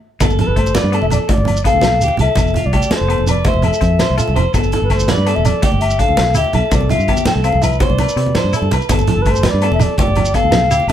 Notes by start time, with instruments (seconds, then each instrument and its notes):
0.20 fingered electric bass G1, clean electric guitar B3 A4, kick, closed hi-hat, muted conga, low agogo, shekere
0.30 high conga, shekere
0.39 flute A4, clean electric guitar A4, closed hi-hat, low conga
0.47 fingered electric bass G1, flute B4
0.56 clean electric guitar A3, flute C5, kick, closed hi-hat, low agogo
0.66 high conga, shekere
0.75 clean electric guitar B4, flute D5, snare, closed hi-hat, muted conga, low conga
0.84 fingered electric bass G2, low conga
0.92 clean electric guitar B3 A4, closed hi-hat, low agogo
1.02 fingered electric bass E1, flute E5, high conga
1.10 flute D5, closed hi-hat, low conga, low agogo, shekere
1.29 clean electric guitar A3, flute D5, muted clean electric guitar stroke, kick, closed hi-hat, muted conga
1.37 fingered electric bass G1, high conga
1.45 closed hi-hat, low conga, low agogo
1.54 low conga, shekere
1.64 clean electric guitar B3 A4, flute F5, kick, closed hi-hat, shekere
1.73 fingered electric bass D2, high conga, low conga
1.81 fingered electric bass B1, snare, closed hi-hat, muted conga, low conga, low agogo
2.01 fingered electric bass D2, clean electric guitar G4, closed hi-hat, shekere
2.08 high conga
2.17 fingered electric bass C2, clean electric guitar A4, closed hi-hat, low conga, low agogo
2.21 flute E5
2.36 fingered electric bass F1, clean electric guitar B3, kick, closed hi-hat, muted conga, low agogo, shekere
2.47 shekere
2.54 clean electric guitar F4, closed hi-hat, low conga
2.66 fingered electric bass C2, flute D5
2.73 clean electric guitar A3 G4, flute D5, kick, closed hi-hat, low agogo
2.81 high conga, shekere
2.91 clean electric guitar A4, snare, closed hi-hat, muted conga, low conga
2.95 flute C5, low conga
3.01 fingered electric bass F1
3.08 clean electric guitar B3, closed hi-hat, low agogo
3.18 fingered electric bass F1, high conga
3.27 clean electric guitar B4, flute D5, closed hi-hat, low conga, low agogo, shekere
3.45 clean electric guitar A3 C5, flute E5, kick, closed hi-hat, muted conga
3.54 fingered electric bass F1, high conga
3.62 clean electric guitar A4, closed hi-hat, low conga, low agogo
3.72 low conga, shekere
3.81 fingered electric bass F2, clean electric guitar C4, kick, closed hi-hat, shekere
3.99 clean electric guitar C5, snare, closed hi-hat, muted conga, low conga, low agogo
4.10 fingered electric bass C2
4.18 clean electric guitar F4 A4, closed hi-hat, shekere
4.28 fingered electric bass C2, high conga
4.36 fingered electric bass F1, clean electric guitar C5, closed hi-hat, low conga, low agogo
4.54 fingered electric bass G1, clean electric guitar B3 A4, kick, closed hi-hat, muted conga, low agogo, shekere
4.63 high conga, shekere
4.72 clean electric guitar A4, flute A4, closed hi-hat, low conga
4.82 fingered electric bass G1, flute B4
4.90 clean electric guitar A3, flute C5, kick, snare, closed hi-hat, low agogo
4.99 high conga, shekere
5.08 clean electric guitar B4, flute D5, snare, closed hi-hat, muted conga, low conga
5.17 fingered electric bass G2, low conga
5.26 clean electric guitar B3 A4, closed hi-hat, low agogo
5.35 fingered electric bass E1, flute E5, high conga
5.45 flute D5, closed hi-hat, low conga, low agogo, shekere
5.62 clean electric guitar A3 G4, flute D5, kick, closed hi-hat, muted conga
5.72 fingered electric bass G1, high conga
5.80 flute E5, closed hi-hat, low agogo
5.90 low conga, shekere
5.99 clean electric guitar D4 A4, flute F5, kick, closed hi-hat, shekere
6.08 fingered electric bass D2, high conga, low conga
6.17 fingered electric bass B1, snare, closed hi-hat, muted conga, low conga, low agogo
6.35 fingered electric bass D2, clean electric guitar E4 G4, flute E5, closed hi-hat, shekere
6.44 high conga
6.53 fingered electric bass B1, clean electric guitar A4, closed hi-hat, low conga, low agogo
6.71 fingered electric bass C2, clean electric guitar C4, flute D5, kick, closed hi-hat, muted conga, low conga, low agogo, shekere
6.80 high conga
6.89 clean electric guitar F4, flute E5, closed hi-hat, low conga, shekere
6.99 fingered electric bass G2, low conga, shekere
7.07 clean electric guitar B3 G4, kick, closed hi-hat, low conga, low agogo
7.17 high conga, shekere
7.25 clean electric guitar A4, flute G5, snare, closed hi-hat, muted conga, low conga
7.35 fingered electric bass C2
7.44 clean electric guitar C4, flute F5, closed hi-hat, low conga, low agogo, shekere
7.52 fingered electric bass C2, high conga, low conga
7.62 clean electric guitar B4, flute E5, closed hi-hat, low conga, low agogo, shekere
7.72 shekere
7.80 clean electric guitar B3 C5, flute D5, kick, closed hi-hat, muted conga, low conga
7.90 fingered electric bass C2, high conga
7.99 clean electric guitar B4, closed hi-hat, low conga, low agogo
8.09 shekere
8.16 fingered electric bass C3, clean electric guitar C4, closed hi-hat
8.26 high conga
8.35 clean electric guitar C5, snare, closed hi-hat, muted conga, low conga, low agogo, shekere
8.44 fingered electric bass G2
8.53 clean electric guitar E4 A4, closed hi-hat, shekere
8.62 fingered electric bass G2, high conga
8.71 fingered electric bass C2, clean electric guitar B4, closed hi-hat, low conga, low agogo, shekere
8.81 shekere
8.89 fingered electric bass G1, clean electric guitar B3 A4, kick, closed hi-hat, muted conga, low agogo, shekere
8.99 high conga, shekere
9.07 clean electric guitar A4, flute A4, closed hi-hat, low conga
9.17 fingered electric bass G1
9.22 flute B4, kick, closed hi-hat
9.26 clean electric guitar A3, low agogo
9.31 flute C5, high conga
9.36 shekere
9.43 clean electric guitar B4, snare, closed hi-hat, muted conga, low conga
9.49 flute D5, low conga
9.54 fingered electric bass G2
9.62 clean electric guitar B3 A4, closed hi-hat, low agogo
9.71 fingered electric bass E1, flute E5, high conga
9.80 flute D5, closed hi-hat, low conga, low agogo, shekere
9.98 clean electric guitar A3 G4, flute D5, kick, closed hi-hat, muted conga
10.07 fingered electric bass G1, high conga
10.15 closed hi-hat, low conga, low agogo
10.25 low conga, shekere
10.34 clean electric guitar B3 A4, flute F5, kick, closed hi-hat, shekere
10.43 fingered electric bass D2, low conga
10.51 fingered electric bass B1, snare, closed hi-hat, muted conga, low conga, low agogo
10.70 fingered electric bass D2, clean electric guitar E4 G4, closed hi-hat, shekere
10.80 high conga
10.87 fingered electric bass E1, flute E5, closed hi-hat, low agogo